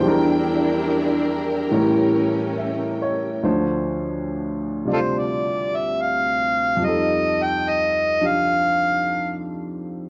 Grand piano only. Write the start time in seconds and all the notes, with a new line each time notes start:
Already playing: E2 C5
0.00 E3 G3
0.06 D4 A#4
1.71 A2 E3 G3 C#4 A#4
2.58 E5
3.02 C#5
3.43 D2 D3 F3 D4 C5
4.85 C3 G3 F4 D5
6.76 F2 F3
6.82 G3 D#4
6.88 A4
8.20 F3 D4 G4